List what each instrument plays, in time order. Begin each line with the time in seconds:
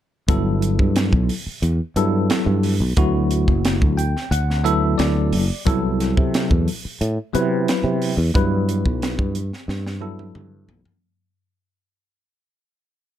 0.28 fretless electric bass G1, tine electric piano F#3 B3 E4 A4, kick, closed hi-hat
0.62 closed hi-hat
0.79 fretless electric bass G2, kick
0.96 snare, closed hi-hat
1.13 fretless electric bass B1, kick
1.29 open hi-hat
1.47 muted fretless electric bass stroke
1.62 fretless electric bass E2, closed hi-hat
1.96 fretless electric bass G2, tine electric piano F#3 B3 E4 A4, closed hi-hat
2.30 snare, closed hi-hat
2.46 fretless electric bass G2
2.63 open hi-hat
2.80 fretless electric bass B1
2.97 fretless electric bass D2, tine electric piano F#3 B3 E4 F#4, kick, closed hi-hat
3.31 closed hi-hat
3.48 fretless electric bass F#1, kick
3.65 snare, closed hi-hat
3.82 fretless electric bass D2, kick
3.97 tine electric piano G5, closed hi-hat
4.17 snare
4.31 fretless electric bass D2, tine electric piano F#5, closed hi-hat
4.50 snare
4.64 tine electric piano F#3 B3 E4 A4 E5, closed hi-hat
4.98 fretless electric bass D2, tine electric piano D5, snare, closed hi-hat
5.33 fretless electric bass F#1, open hi-hat
5.65 fretless electric bass C2, tine electric piano F#3 B3 E4 A4, kick, closed hi-hat
6.00 snare, closed hi-hat
6.17 fretless electric bass C3, kick
6.34 snare, closed hi-hat
6.51 fretless electric bass E2, kick
6.68 open hi-hat
6.85 muted fretless electric bass stroke
7.01 fretless electric bass A2, closed hi-hat
7.33 fretless electric bass C3, tine electric piano F#3 B3 E4 B4, closed hi-hat
7.68 snare, closed hi-hat
7.84 fretless electric bass C3
8.02 open hi-hat
8.17 fretless electric bass E2
8.34 fretless electric bass G2, tine electric piano F#3 B3 E4 B4, kick, closed hi-hat
8.69 closed hi-hat
8.86 fretless electric bass B1, kick
9.02 snare, closed hi-hat
9.19 fretless electric bass G2, kick
9.35 closed hi-hat
9.53 snare
9.68 fretless electric bass G2, snare
9.87 snare
10.00 tine electric piano F#3 B3 E4 A4
10.19 high tom
10.35 fretless electric bass G2, mid tom
10.68 fretless electric bass B1, floor tom
10.85 floor tom